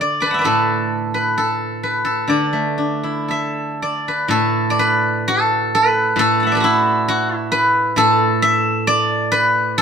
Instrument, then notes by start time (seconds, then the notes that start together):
guzheng
Already playing: D3
0.00 D5
0.20 B4 B5 D6
0.26 A5
0.31 E5 F#5
0.39 B4 D5
0.44 A2 A4
1.14 B4
1.38 A4
1.83 B4
2.05 A4
2.28 D3 D5
2.53 A3
2.78 D4
3.03 E4
3.28 A4 E5
3.82 D5
4.08 B4
4.28 A2 A4
4.70 D5
4.79 B4
5.28 A4
5.75 B4
6.16 A2 A4
6.40 F#5 A5
6.47 E5
6.52 B4 D5
6.57 F#4 A4
6.64 E4
7.08 F#4
7.34 E4
7.52 B4
7.96 A2 A4
8.42 E5
8.87 D5
9.32 B4
9.78 A4